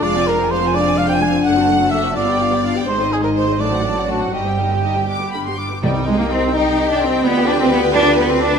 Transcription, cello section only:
X:1
M:6/8
L:1/16
Q:3/8=84
K:Cm
V:1 name="Cello section"
F,,12 | ^F,,6 G,,6 | A,,6 =A,,6 | G,,8- G,,2 z2 |
G,2 A, B, C2 E3 D C2 | =B,2 D C B,2 D2 B, C D2 |]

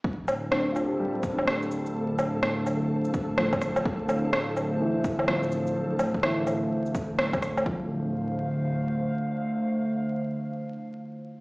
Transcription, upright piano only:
X:1
M:4/4
L:1/16
Q:"Swing 16ths" 1/4=126
K:Dm
V:1 name="Upright piano"
z4 [CD] F G2 G, C D6- | D6- D z4 z F,4- | F,8 E,4 F,4- | F,4 E,12- |
E, z12 z3 | z16 |]
V:2 name="Upright piano" clef=bass
z16 | z16 | z16 | z16 |
F,16- | F,16 |]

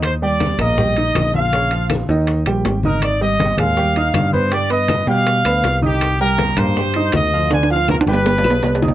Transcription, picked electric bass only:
X:1
M:4/4
L:1/8
Q:1/4=160
K:Gphr
V:1 name="Picked electric bass" clef=bass
E,,3 B,,,3 B,,,2- | B,,,3 E,,2 B,,, A,,,2- | A,,,3 E,,3 G,,2- | G,,3 =B,,2 D,, C,,2- |
C,,3 G,,3 D,,2- | D,,3 G,,,2 =B,,, C,,2 |]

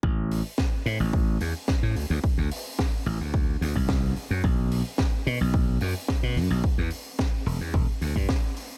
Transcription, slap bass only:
X:1
M:4/4
L:1/16
Q:1/4=109
K:Ador
V:1 name="Slap bass" clef=bass
A,,,3 z3 A,, A,,,3 E,, z2 A,, D,, D,, | z D,, z4 A,,, D,,3 D,, C,,3 z F,, | B,,,3 z3 B,, B,,,3 F,, z2 B,, F,, B,,, | z E,, z4 E,,, E,, E,,, z D,, G,, z4 |]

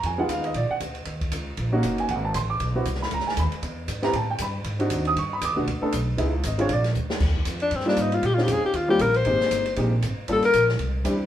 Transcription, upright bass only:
X:1
M:4/4
L:1/8
Q:"Swing" 1/4=234
K:C#dor
V:1 name="Upright bass" clef=bass
=F,,2 _E,,2 A,,, z =D,,2 | D,,2 C,,2 A,,,2 F,,,2 | G,,,2 =A,,,2 B,,,2 ^B,,,2 | C,, z D,, z E,,2 G,,2 |
=A,,2 =G,,2 ^G,,2 D,,2 | =G,,2 (3E,, =D,, B,,, D,, z B,,,2 | C,,2 G,,,2 A,,,2 =D,,2 | [K:Eb] E,,2 F,,2 G,,2 A,,2 |
B,,2 F,, z E,,2 B,,,2 | A,,, z G,,,2 B,,,2 A,,, z | G,,, z B,,,2 C,,2 =E,,2 |]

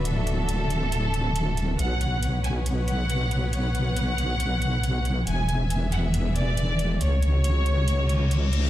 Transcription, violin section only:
X:1
M:4/4
L:1/16
Q:"Swing 16ths" 1/4=138
K:Bdor
V:1 name="Violin section"
A16 | f6 g3 z f6 | f16 | g6 f3 z d6 |
c16 |]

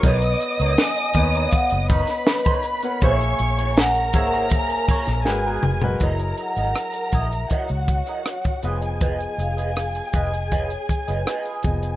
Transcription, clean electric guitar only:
X:1
M:4/4
L:1/16
Q:1/4=80
K:F#mix
V:1 name="Clean electric guitar"
[DAc] z2 [DAc] z2 [DAc] [DAc] z2 [DAc] z2 [DAc] z2 | [EGc] z2 [EGc] z2 [EGc] [EGc] z2 [EGc] z2 [B,FA] z2 | [EAd] z2 [EAd] z2 [EAd] z [EAd] z2 [EAd] z2 [^EBd] z | [^EBd] z2 [EBd] z2 [EBd] z [EBd] z2 [EBd] [EBd]2 z2 |]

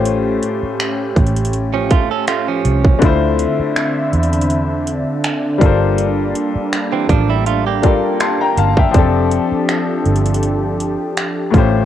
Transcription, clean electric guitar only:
X:1
M:4/4
L:1/16
Q:"Swing 16ths" 1/4=81
K:F
V:1 name="Clean electric guitar"
z8 z [^E,^C] [A,^E] [CA] [A,E] [E,C]3 | z16 | z4 z [E,C] [F,D] [G,E] [A,F] [B,G]6 z | z16 |]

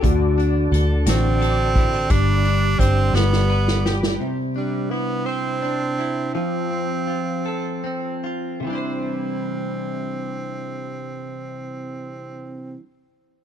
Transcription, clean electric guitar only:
X:1
M:6/8
L:1/16
Q:3/8=55
K:C
V:1 name="Clean electric guitar"
D,2 D2 A2 ^F2 A2 E F | G,2 D2 c2 G,2 B2 G2 | C,2 D2 E2 c2 D2 E2 | F,2 C2 F2 A2 C2 F2 |
[C,E,G,DEc]12- | [C,E,G,DEc]12 |]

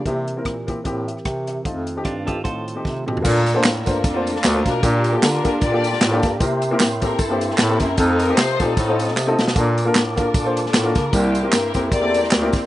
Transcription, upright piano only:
X:1
M:4/4
L:1/16
Q:"Swing" 1/4=152
K:Bb
V:1 name="Upright piano"
[B,C=EG]2 z [B,CEB]2 z [B,CEG] z [B,CEG]2 z6 | [A,CEF]2 z [A,CEG]2 z [A,CEG] z [A,CEF]2 z [A,CEG]2 z [A,CEG] z | [B,DFAB]2 z [B,DFAc]2 z [B,DFAc]2 z [B,DFAc]2 z2 [B,DFAc]2 z | [B,DFGB]2 z [B,DFGA]2 z [B,DFGA]2 z [B,DFGA]2 z2 [B,DFGA]2 z |
[B,C=EGB]2 z [B,CEGB]2 z [B,CEGA]2 z [B,CEGc]2 z2 [B,CEGB]2 z | [A,CEFA]2 z [A,CEFG]2 z [A,CEFG]2 z [A,CEFc]2 z2 [A,CEFA]2 z | [B,DFAB]2 z [B,DFAB]2 z [B,DFAB]2 z [B,DFAc]2 z2 [B,DFAB]2 z | [B,C=EGB]2 z [B,CEGB]2 z [B,CEGc]2 z [B,CEGA]2 z2 [B,CEGB]2 z |]
V:2 name="Upright piano"
C,6 z4 [G=e]2 [Bg]2 [Ge]2- | [G=e]2 z12 z2 | B,,6 z8 z2 | B,,6 z8 z2 |
C,6 z8 z2 | z16 | B,,6 z8 z2 | C,6 z8 z2 |]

